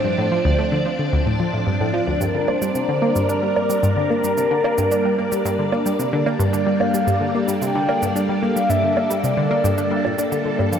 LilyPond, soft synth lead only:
\new Staff \with { instrumentName = "Soft synth lead" } { \time 4/4 \key g \minor \tempo 4 = 111 c''2. r4 | bes'8 c''4. d''4. bes'8~ | bes'2~ bes'8 r4. | d''8 f''4 r8 g''4 r8 f''8 |
e''4 d''2 r4 | }